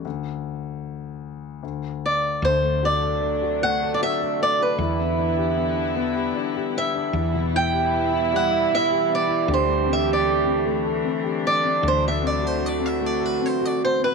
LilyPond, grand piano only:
\new Staff \with { instrumentName = "Grand piano" } { \time 3/4 \key d \mixolydian \tempo 4 = 76 d,2 d,4 | d16 a16 fis'16 a'16 a16 fis'16 a16 a'16 fis'16 a'16 a16 fis'16 | e16 b16 d'16 g'16 b16 d'16 b16 g'16 d'16 g'16 b16 d'16 | e16 b,16 e'16 g'16 b'16 e'16 g16 e''16 e'16 g'16 b16 e'16 |
d16 a16 c'16 g'16 a16 c'16 a16 a'16 c'16 g'16 a16 c'16 | d16 a16 c'16 fis'16 a16 c'16 a16 a'16 c'16 fis'16 a16 c'16 | }